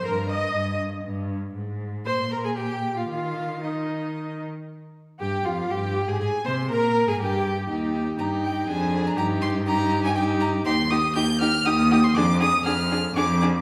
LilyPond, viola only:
\new Staff \with { instrumentName = "Viola" } { \time 3/4 \key ees \major \tempo 4 = 120 bes'8 ees''4 r4. | r4 c''8 bes'16 aes'16 g'8. f'16 | f'4 ees'4. r8 | r4 g'8 f'8 g'8. aes'16 |
aes'8 c''8 bes'8. aes'16 g'4 | ees'4 ees'4 d'4 | ees'4 ees'4 ees'4 | ees'8 ees'8 ees'8 ees'8 ees'8 ees'8 |
d'8 d'8 d'8 d'8 d'8 d'8 | }